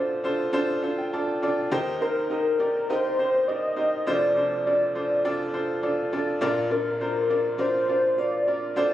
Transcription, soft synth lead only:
Already playing: C5
2.01 A#4
2.31 A#4
2.90 C5
3.48 D#5
4.07 D5
4.66 D5
6.72 A#4
7.02 A#4
7.60 C5
8.19 D5
8.78 D5

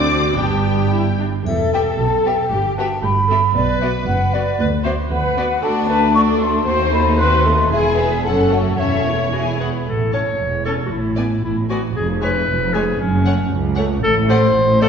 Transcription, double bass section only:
Already playing: D2
0.37 G1
1.46 E1
1.98 B1
2.51 G1
3.03 G1
3.55 B1
4.07 F#1
4.59 D2
5.11 D2
5.63 D2
6.66 D#2
7.71 E1
8.24 F#1
8.79 E1
9.87 A1
10.40 E1
10.91 A1
11.43 A1
11.95 F1
12.48 F1
12.99 F#1
13.52 C#2
14.03 A1
14.55 A1

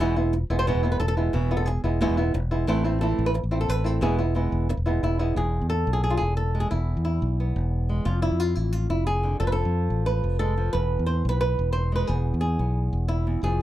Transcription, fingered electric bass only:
0.00 E1
0.50 E1
0.75 E1
1.00 E1
1.34 E1
1.84 E1
2.09 E1
2.34 E1
2.68 A1
3.19 A1
3.44 A1
3.69 A1
4.02 E1
4.52 E1
4.77 E1
5.03 E1
5.36 E1
5.61 E2
5.87 B1
6.21 E1
6.72 E1
6.97 E2
7.22 B1
7.56 E1
8.06 F1
8.31 F2
8.57 A1
8.90 F1
9.40 F1
9.65 F2
9.90 A1
10.24 F1
10.74 E1
10.99 E2
11.25 B1
11.59 E1
12.09 E1
12.34 E2
12.59 B1
12.93 E1
13.43 F1

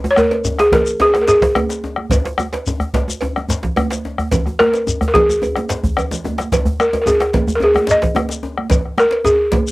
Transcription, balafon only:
0.11 C#5
0.18 A#4
0.60 G#4
0.73 A#4
1.02 G#4
1.21 A#4
1.28 G#4
4.59 A#4
5.08 A#4
5.14 G#4
6.81 A#4
7.02 A#4
7.07 G#4
7.55 A#4
7.63 G#4
7.91 D#5
8.99 A#4
9.25 G#4

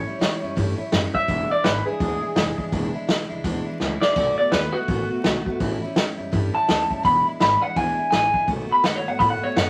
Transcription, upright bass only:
0.07 muted upright bass stroke
0.21 E2
0.43 F#2
0.57 G2
0.93 F#2
1.14 muted upright bass stroke
1.29 E1
1.51 muted upright bass stroke
1.65 G#1
1.86 muted upright bass stroke
2.01 D2
2.22 muted upright bass stroke
2.36 E1
2.58 muted upright bass stroke
2.72 E1
3.08 B1
3.30 C#2
3.45 D2
3.67 muted upright bass stroke
3.81 C#2
4.16 B1
4.39 muted upright bass stroke
4.53 D#2
4.88 A1
5.11 muted upright bass stroke
5.25 B1
5.46 muted upright bass stroke
5.61 A1
5.83 muted upright bass stroke
5.97 E2
6.19 F#2
6.33 G2
6.54 muted upright bass stroke
6.69 D2
6.90 muted upright bass stroke
7.05 E1
7.26 muted upright bass stroke
7.40 G#1
7.62 muted upright bass stroke
7.76 D2
7.98 muted upright bass stroke
8.12 A1
8.34 muted upright bass stroke
8.48 B1
8.69 muted upright bass stroke
8.84 F#2
9.06 G#2
9.20 A2
9.42 muted upright bass stroke
9.56 F#2

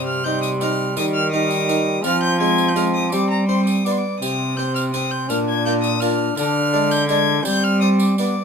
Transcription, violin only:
0.07 F6
0.24 G6
0.42 D#6
0.61 F6
0.97 D#6
1.14 F6
1.32 D#6
2.05 F6
2.23 G6
2.41 G#6
2.68 G6
2.77 F6
2.95 D#6
3.12 D6
3.31 A#5
3.49 C6
3.66 D#6
3.85 D6
3.91 C6
3.97 D6
4.20 D#6
4.57 G6
4.75 F6
4.93 D#6
5.11 G6
5.30 F6
5.49 G#6
5.66 G6
5.82 D#6
6.00 F6
6.38 F6
6.91 G6
7.09 G#6
7.45 G6
7.64 F6
7.81 D#6
8.01 D6
8.19 D6

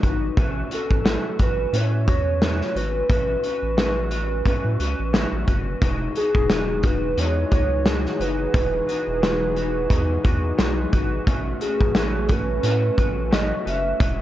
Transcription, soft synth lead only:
0.74 A4
1.43 B4
1.77 C#5
2.77 B4
6.17 G#4
6.86 B4
7.19 C#5
8.21 B4
11.61 G#4
12.31 B4
13.33 D#5
13.68 E5

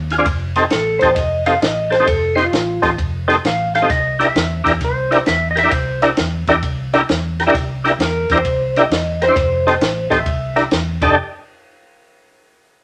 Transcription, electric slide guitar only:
0.71 A4
0.99 C5
1.15 D#5
1.46 F5
1.62 D#5
1.92 C5
2.08 A4
2.37 F4
3.47 F5
3.76 F5
3.91 D#5
4.21 E5
4.84 C5
5.28 E5
5.51 D#5
5.59 E5
5.74 C5
8.04 A#4
8.35 C5
8.80 D#5
9.23 C5
9.38 C5
10.11 E5
11.03 A5

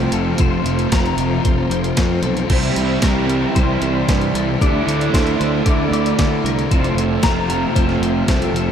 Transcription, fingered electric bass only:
0.12 F1
0.40 F1
0.64 F1
0.92 F1
1.17 F1
1.45 F1
1.70 F1
1.98 F2
2.22 B1
2.50 C2
2.76 C2
3.03 C2
3.56 C2
3.82 C2
4.09 G2
4.34 C2
4.62 D2
4.87 D2
5.14 D2
5.40 D2
5.66 D2
5.91 D2
6.19 D3
6.44 C2
6.71 F1
6.95 F1
7.23 F1
7.76 F1
8.00 F1
8.28 C2
8.52 F1

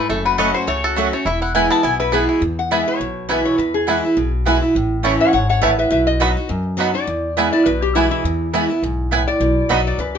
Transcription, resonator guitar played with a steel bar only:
2.00 B4
2.13 G#4
2.59 F#5
2.72 E5
2.88 C#5
3.31 B4
3.45 C#5
3.58 B4
3.74 G#4
5.20 C#5 F#5
5.33 C#5 F#5
5.49 C#5 F#5
5.63 B4 E5
5.79 B4 E5
5.91 B4 E5
6.07 D#5
6.95 D5
7.53 D5
7.66 B4
7.82 G4
7.95 E4
8.11 E4
9.28 D5
9.87 D5
10.00 B4
10.15 G4

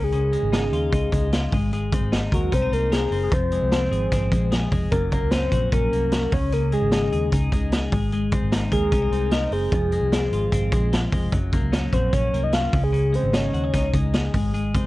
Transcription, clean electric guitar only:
Already playing: C#3
0.13 C#3
0.33 G#3
0.52 D#4
0.73 F4
0.93 D#4
1.13 G#3
1.33 F4
1.53 G#3
1.73 G#3
1.93 C4
2.12 D#4
2.32 A#4
2.52 C#4
2.62 D#4
2.72 C4
2.92 A#4
3.12 C4
3.31 F2
3.52 G#3
3.72 C4
3.91 G#4
4.12 C4
4.32 G#3
4.52 G#4
4.72 G#3
4.92 F#2
5.12 A#3
5.32 C#4
5.52 F#4
5.72 C#4
5.93 A#3
6.13 F#4
6.33 C#3
6.52 C#3
6.72 G#3
6.93 D#4
7.13 G#4
7.33 D#4
7.53 G#3
7.73 G#4
7.93 G#3
8.13 G#3
8.33 C4
8.53 D#4
8.72 A#4
8.92 C#4
9.02 D#4
9.12 C4
9.32 A#4
9.53 C4
9.73 F2
9.93 G#3
10.13 C4
10.33 F4
10.53 C4
10.73 G#3
10.93 F4
11.13 G#3
11.33 F#2
11.54 A#3
11.72 C#4
11.93 F#4
12.13 C#4
12.34 A#3
12.53 F#4
12.73 C#3
12.93 C#3
13.12 G#3
13.33 D#4
13.54 F#4
13.64 G#4
13.74 D#4
13.94 G#3
14.14 G#4
14.34 G#3
14.54 G#3
14.75 C4

